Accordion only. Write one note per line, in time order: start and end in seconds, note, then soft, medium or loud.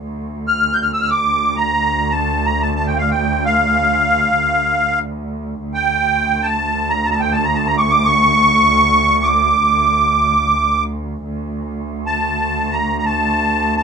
0.47 0.75 F6 medium
0.73 0.82 G6 medium
0.82 0.92 F6 medium
0.93 1.01 E6 medium
1.01 1.10 E6 medium
1.01 1.10 F6 medium
1.11 1.56 D6 medium
1.56 2.13 A#5 medium
2.11 2.46 A5 medium
2.46 2.62 A#5 medium
2.62 2.74 A5 medium
2.76 2.87 A5 medium
2.87 2.98 G5 medium
2.97 3.11 F5 medium
3.11 3.45 G5 medium
3.45 4.99 F5 medium
5.74 6.47 G5 medium
6.42 6.92 A5 medium
6.90 7.07 A#5 medium
7.05 7.10 A5 medium
7.11 7.21 A5 medium
7.11 7.15 A#5 medium
7.20 7.33 G5 medium
7.32 7.46 A5 medium
7.45 7.57 A#5 medium
7.55 7.68 A5 medium
7.67 7.76 A#5 medium
7.77 7.92 C#6 medium
7.77 7.80 D6 medium
7.90 8.07 D6 medium
8.05 9.28 C#6 loud
9.23 10.84 D6 medium
12.06 12.76 A5 medium
12.72 12.97 A#5 medium
12.98 13.05 A#5 medium
13.06 13.75 A5 medium
13.77 13.83 A5 medium